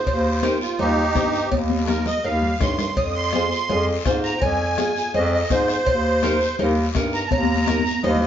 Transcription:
Already playing: C5
0.06 D#2, bombo low, cowbell, high conga, long guiro
0.42 D#4 G4 A#4, bombo rim, cowbell, high conga, short guiro
0.61 F4, short guiro
0.79 D#2 D#4 G4 C5, cowbell, high conga, low conga, long guiro
1.14 G2 D#4 G4 C5, bombo low, bombo rim, cowbell, high conga, short guiro
1.33 short guiro
1.52 D#2, bombo low, cowbell, high conga, long guiro
1.70 high conga
1.84 D#4 G4 A4, high conga
1.88 A#4, bombo rim, cowbell, short guiro
2.06 D#5, low conga, short guiro
2.24 D#2 D#4 G4 A#4 F5, cowbell, long guiro
2.42 low conga
2.60 G2 D#4 G4 C#5 C6, bombo low, bombo rim, cowbell, low conga, low timbale, short guiro
2.78 bombo rim, low conga, short guiro
2.97 F2 D#6, bombo low, cowbell, high conga, long guiro
3.15 C6
3.33 F4 G#4 C5, bombo rim, cowbell, high conga, short guiro
3.52 short guiro
3.69 F2 F4 G#4 D#5, cowbell, high conga, low conga, long guiro
4.05 G#2 F4 G#4 C5, bombo low, bombo rim, cowbell, high conga, low timbale, short guiro
4.24 A#5, short guiro
4.38 F2 G5, bombo low, cowbell, long guiro
4.42 G#5, high conga, low conga
4.77 F4 G#4 D#5, bombo rim, cowbell, high conga, short guiro
4.96 short guiro
5.14 F2 F4 G#4 C5 D#5, cowbell, high conga, low conga, long guiro
5.33 D#5
5.50 G#2 F4 G#4 C5, bombo low, bombo rim, cowbell, high conga, low timbale, short guiro
5.68 bombo rim, short guiro
5.86 D#2, bombo low, cowbell, high conga, long guiro
6.23 D#4 G4 A#4, bombo rim, cowbell, high conga, short guiro
6.41 short guiro
6.59 D#2 D#4 G4 A#4, cowbell, high conga, low conga, long guiro
6.95 G2 D#4 G4 A#4, bombo low, bombo rim, cowbell, high conga, short guiro
7.13 A#5, short guiro
7.27 A5, high conga
7.31 D#2 A#5, bombo low, cowbell, long guiro
7.43 high conga
7.55 high conga
7.67 D#4 G4 A#4, bombo rim, cowbell, high conga, short guiro
7.79 high conga
7.86 short guiro
8.03 D#2 D#4 G4 C5 D#5, cowbell, low conga, high timbale, long guiro
8.15 low conga
8.22 D#5, high timbale

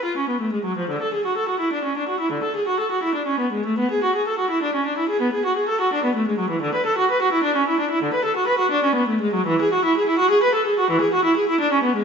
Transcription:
0.05 F4
0.17 C#4
0.29 B3
0.41 A3
0.53 G#3
0.65 F#3
0.78 F3
0.90 D3
1.02 A4
1.14 G#4
1.26 F#4
1.37 A4
1.49 F#4
1.60 E4
1.73 D4
1.85 C#4
1.97 D4
2.09 F#4
2.20 E4
2.32 D3
2.44 A4
2.56 G#4
2.68 F#4
2.80 A4
2.91 F#4
3.03 E4
3.15 D4
3.27 C#4
3.40 B3
3.52 G#3
3.66 A3
3.79 B3
3.91 G#4
4.04 F#4
4.16 G#4
4.28 A4
4.39 F#4
4.50 E4
4.63 D4
4.75 C#4
4.86 D4
4.98 E4
5.09 G#4
5.21 B3
5.33 G#4
5.45 F#4
5.57 G#4
5.69 A4
5.81 F#4
5.93 D4
6.04 B3
6.16 A3
6.28 G#3
6.39 F#3
6.50 E3
6.62 D3
6.75 B4
6.86 A4
6.98 F#4
7.11 B4
7.22 F#4
7.32 E4
7.43 D4
7.56 C#4
7.68 E4
7.80 D4
7.91 E4
8.03 D3
8.14 B4
8.25 A4
8.36 F#4
8.47 B4
8.59 F#4
8.71 D4
8.84 C#4
8.95 B3
9.08 A3
9.21 G#3
9.34 F#3
9.47 E3
9.61 G#4
9.73 F#4
9.85 E4
9.97 G#4
10.09 E4
10.19 F#4
10.30 G#4
10.43 B4
10.55 A4
10.67 G#4
10.79 F#4
10.90 E3
11.01 G#4
11.14 F#4
11.24 E4
11.37 G#4
11.49 E4
11.61 D4
11.73 C#4
11.84 B3
11.96 G#3

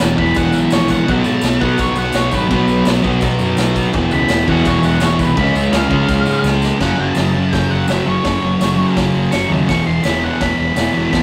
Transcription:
Already playing: E2 B2 E3 B3
0.00 E1, snare
0.17 E1 B2 E3 B5, kick
0.21 E2
0.26 tambourine
0.34 E1 F#5, kick, tambourine, crash
0.52 B1 E5, tambourine
0.61 tambourine
0.70 A#1 C#5, snare, tambourine, crash
0.88 F#5, kick, tambourine
0.98 tambourine
1.06 B1 B2 F#3, kick, crash
1.11 B3
1.24 G#2 A5, tambourine
1.41 B1, snare, tambourine, crash
1.60 B2 F#3 B3 F#5, kick, tambourine
1.65 B2
1.69 tambourine
1.78 B1 C#5, kick, tambourine, crash
1.87 tambourine
1.95 B1 F#5, tambourine
2.12 B1, snare, tambourine, crash
2.16 C#5
2.31 G#1 B4, kick, tambourine
2.49 B2 F#3 B4, kick, crash
2.54 B3
2.68 B1, tambourine
2.85 B1, snare, tambourine, crash
3.03 B1 F#3 B3, kick, tambourine
3.07 B2
3.12 tambourine
3.21 B1, kick, tambourine, crash
3.30 tambourine
3.39 F#2, tambourine
3.57 B1, snare, tambourine, crash
3.76 kick, tambourine
3.93 E1 E2 B2, kick, crash
3.97 E3
4.11 C#2 B5, tambourine
4.28 E1, snare, tambourine, crash
4.47 E2 B2 E3 F#5, kick, tambourine
4.51 E2
4.57 tambourine
4.65 E1 C#5, kick, tambourine, crash
4.83 E1 F#5, tambourine
5.00 E1 C#5, snare, tambourine, crash
5.10 tambourine
5.19 C2 B4, kick, tambourine
5.35 C#2 C#3 G#3 B5, kick, crash
5.40 C#4
5.46 tambourine
5.55 C#2 E5, tambourine
5.64 tambourine
5.73 C#2 F5, snare, tambourine, crash
5.89 C#2 G#3 C#4, kick
5.94 C#3
6.09 C#2, kick, tambourine, crash
6.18 tambourine
6.25 G#2, tambourine
6.43 C#2, snare, tambourine
6.53 tambourine
6.62 snare, tambourine
6.71 tambourine
6.79 F#1 F#2 C#3 F#5, kick, snare, crash
6.83 F#3
6.98 F#1 F#3 A5
7.02 C#3
7.15 F#1 F#2 C#3, snare, open hi-hat, tambourine
7.20 F#3
7.34 C#3 F#3
7.53 F#1 G5, kick, snare, open hi-hat
7.71 F#1 F#5
7.88 F#1 F#2 C#3 E5, snare, open hi-hat, tambourine
7.92 F#3
8.06 F#1 F#3 C#5
8.11 C#3
8.24 F#1 F#2 C#3 C#5, kick, snare, open hi-hat
8.28 F#3
8.42 F#1 F#3
8.46 C#3
8.60 F#1 F#2 C#3, snare, open hi-hat, tambourine
8.65 F#3
8.77 F#3
8.81 C#3
8.97 F#1, kick, snare, open hi-hat
9.15 F#1
9.32 F#1 F#2 C#3 F#3 C#6, snare, open hi-hat, tambourine
9.49 D#2 F#3
9.54 C#3
9.68 E1 E2 B2 C#6, kick, snare, open hi-hat
9.73 E3
9.85 E1 E3 C6
9.90 B2
10.03 E1 E2 B2 B5, snare, open hi-hat, tambourine
10.08 E3
10.22 B2 E3 F#5
10.41 E1 B5, kick, snare, open hi-hat
10.58 E1 B5
10.75 E1 E2 B2 E3, snare, open hi-hat, tambourine
10.93 E1 E3
10.98 B2
11.11 E1 E2 B2, kick, snare, open hi-hat
11.16 E3

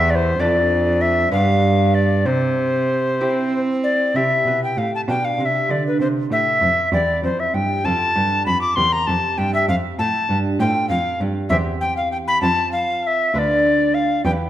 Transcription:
Already playing: E2 B3 E4 G4 E5
0.10 D5
0.15 C5
0.39 F2 A3 D4 A4 D5
1.01 E5
1.32 G2 B3 D4 G4 F5
1.95 D5
2.26 C3 C5
3.20 C4 E4 G4
3.84 D5
4.14 C3 C4 E4 G4 E5
4.45 B2
4.64 G5
4.77 A2 F5
4.95 A5
5.08 B2 D4 F4 G4 G5
5.25 F5
5.38 C3 F5
5.45 E5
5.70 D3 D5
5.88 B4
6.00 C3 C5
6.31 A2 E5
6.62 F2
6.92 E2 C4 E4 G4 D5
7.23 F2 C5
7.40 E5
7.54 G2 G5
7.85 F2 C4 F4 A4 A5
8.16 G2
8.46 F2 B5
8.61 D6
8.76 E2 C4 G4 A#4 C6
8.92 A#5
9.07 F2 A5
9.38 G2 G5
9.54 E5
9.68 F2 F5
9.99 A2 A5
10.30 G2
10.60 A2 C4 F4 A4 G5
10.89 F2 F5
11.20 G2
11.49 E2 C4 G4 C5 E5
11.81 G5
11.97 F5
12.12 G5
12.28 B5
12.42 F2 C4 F4 C5 A5
12.72 F5
13.03 E5 F5
13.34 D2 D4 F4 B4 E5
13.39 D5
13.94 F5
14.25 E2 B3 E4 G4 G5

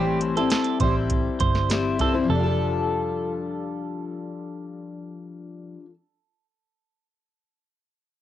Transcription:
Already playing: A1 A2 E3 G3 C4 E4 G4 C5
0.21 closed hi-hat
0.36 G3 C4 E4 A4 C5, closed hi-hat
0.50 A4, snare, closed hi-hat
0.64 closed hi-hat
0.80 A1 G3 C4 E4 C5, kick, closed hi-hat
1.10 kick, closed hi-hat
1.40 G1 C5, kick, closed hi-hat
1.55 snare
1.69 G3 C4 E4 C5, snare, closed hi-hat
1.98 G3 C4 E4 A4 C5, kick, closed hi-hat
2.14 G3 C4 E4 C5
2.24 F3
2.29 F1 G3 A4
2.35 D4
2.39 F4
2.44 A4

